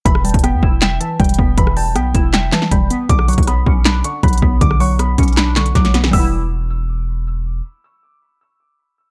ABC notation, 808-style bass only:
X:1
M:4/4
L:1/16
Q:1/4=158
K:Edor
V:1 name="808-style bass" clef=bass
E,,,3 E,,,2 E,, E,,,4 z2 E,,,2 E,,,2 | E,,,4 B,,,2 E,,,4 z2 E,,,2 z2 | B,,,3 B,,,3 B,,,4 z2 B,,,2 B,,,2 | B,,,6 B,,,6 B,,,4 |
E,,,16 | z16 |]